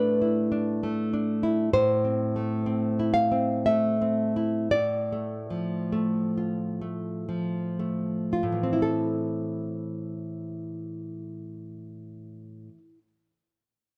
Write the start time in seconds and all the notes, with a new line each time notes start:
Already playing: A2 A3 D4 B4
0.22 E4
0.52 D4
0.83 A3
1.13 D4
1.43 E4
1.73 A2 C5
2.05 C4
2.36 A3
2.66 C4
3.00 E4
3.14 F5
3.32 C4
3.66 A3 E5
4.02 C4
4.36 E4
4.71 A2 D5
5.12 A3
5.50 F3
5.92 A3
6.38 F4
6.82 A3
7.29 F3
7.79 A3
8.33 F4
8.43 A2
8.52 E3
8.63 C4
8.73 E4
8.82 A4